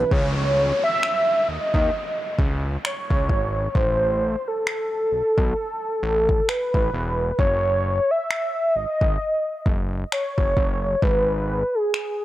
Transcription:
0.00 0.14 B4 medium
0.11 0.72 C#2 loud
0.11 0.83 C#5 loud
0.11 kick loud
0.11 downlifter medium
0.84 1.50 E5 loud
1.03 finger snap loud
1.48 1.59 D#2 soft
1.48 2.39 D#5 loud
1.74 1.90 D#2 medium
1.74 kick medium
2.39 2.77 C#2 loud
2.39 kick medium
2.85 3.77 C#5 loud
2.85 finger snap loud
3.10 3.31 C#2 medium
3.10 kick medium
3.29 3.68 G#1 medium
3.29 kick medium
3.75 4.36 A1 loud
3.75 4.49 C5 medium
3.75 kick loud
4.48 6.50 A4 medium
4.67 finger snap loud
5.12 5.22 B1 soft
5.38 5.54 B1 medium
5.38 kick medium
6.03 6.41 A1 loud
6.29 kick medium
6.49 7.39 B4 loud
6.49 finger snap loud
6.74 6.91 A1 medium
6.74 kick medium
6.94 7.32 E1 loud
7.39 8.00 F#1 loud
7.39 8.12 C#5 loud
7.39 kick loud
8.11 8.77 E5 loud
8.31 finger snap loud
8.76 8.86 G#1 soft
8.76 9.66 D#5 loud
9.01 9.18 G#1 medium
9.01 kick medium
9.66 10.05 F#1 medium
9.66 kick medium
10.12 11.04 C#5 loud
10.12 finger snap loud
10.38 10.54 F#1 medium
10.38 kick medium
10.57 10.95 F#1 medium
10.57 kick medium
11.02 11.63 G#1 loud
11.02 11.76 B4 loud
11.02 kick loud
11.75 12.25 G#4 loud
11.94 finger snap loud

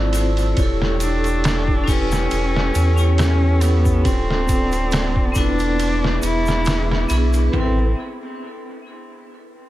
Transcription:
0.00 0.54 G#1 medium
0.00 0.60 F3 medium
0.00 0.13 C4 medium
0.00 0.14 E4 medium
0.00 0.15 F4 medium
0.00 0.54 A4 medium
0.00 0.16 C5 loud
0.00 0.11 D5 loud
0.00 0.54 A5 medium
0.00 4.02 E6 medium
0.13 0.52 C4 medium
0.13 0.53 E4 medium
0.13 0.54 F4 medium
0.13 0.54 C5 medium
0.13 ride medium
0.13 shaker loud
0.37 ride soft
0.37 shaker soft
0.54 2.28 E1 medium
0.54 1.83 E4 medium
0.54 1.82 C#5 medium
0.54 4.02 G5 medium
0.54 kick loud
0.54 ride medium
0.54 shaker soft
0.58 1.84 G4 medium
0.58 5.76 A4 medium
0.58 1.86 A4 loud
0.58 4.03 C#6 medium
0.82 snare medium
1.00 1.90 D4 loud
1.00 ride medium
1.00 shaker medium
1.24 ride soft
1.24 shaker soft
1.44 snare loud
1.44 ride loud
1.44 shaker soft
1.68 kick medium
1.84 2.92 C#4 medium
1.84 2.93 E4 medium
1.84 open hi-hat medium
1.88 3.18 C#4 loud
1.88 2.95 G4 medium
1.88 2.96 B4 loud
1.88 kick loud
1.88 shaker medium
2.12 snare soft
2.12 shaker medium
2.31 2.71 E1 medium
2.31 ride medium
2.31 shaker soft
2.56 snare medium
2.75 4.07 E2 loud
2.75 ride medium
2.75 shaker medium
2.96 3.56 C#4 loud
2.96 3.57 E4 medium
2.96 3.58 G4 medium
2.96 shaker soft
3.01 3.58 C#5 loud
3.18 3.64 C#4 loud
3.18 snare loud
3.18 ride medium
3.18 shaker soft
3.60 4.08 B3 medium
3.60 4.00 C#4 medium
3.60 4.00 E4 medium
3.60 4.01 G4 medium
3.60 ride medium
3.60 shaker loud
3.64 4.02 B4 medium
3.85 kick medium
3.85 shaker soft
4.01 5.29 C4 medium
4.01 5.30 D4 medium
4.05 5.32 D1 loud
4.05 5.38 C4 loud
4.05 5.32 F4 medium
4.05 5.33 A4 medium
4.05 5.78 D5 medium
4.05 5.78 A5 medium
4.05 7.50 D6 loud
4.05 kick loud
4.05 ride medium
4.05 shaker soft
4.30 snare soft
4.48 kick medium
4.48 ride medium
4.48 shaker medium
4.72 ride soft
4.72 shaker soft
4.91 snare loud
4.91 ride medium
4.91 shaker soft
5.16 kick loud
5.32 6.19 E1 medium
5.32 6.40 B3 loud
5.32 6.41 D4 medium
5.32 kick medium
5.32 ride medium
5.32 shaker medium
5.36 6.23 D4 loud
5.36 6.43 E4 medium
5.36 6.44 B4 loud
5.59 ride soft
5.59 shaker soft
5.78 7.51 G#4 medium
5.78 7.51 E5 medium
5.78 7.51 B5 medium
5.78 ride medium
5.78 shaker soft
6.04 snare medium
6.22 6.66 E1 medium
6.22 7.07 E4 loud
6.22 ride medium
6.22 shaker medium
6.46 snare medium
6.46 shaker soft
6.65 7.05 E1 loud
6.65 snare loud
6.65 ride medium
6.65 shaker soft
6.91 snare soft
7.09 7.49 B1 loud
7.09 7.48 B3 medium
7.09 7.49 D4 medium
7.09 7.49 E4 medium
7.09 ride medium
7.09 shaker medium
7.13 7.50 G#4 loud
7.33 ride soft
7.33 shaker soft
7.48 7.86 C4 medium
7.48 7.84 B4 medium
7.53 7.94 A1 loud
7.53 7.94 C4 medium
7.53 7.88 E4 medium
7.53 7.94 A4 medium
7.53 7.94 B4 medium
7.53 7.94 E5 medium
7.53 kick loud
7.53 floor tom loud
7.60 7.90 A4 medium

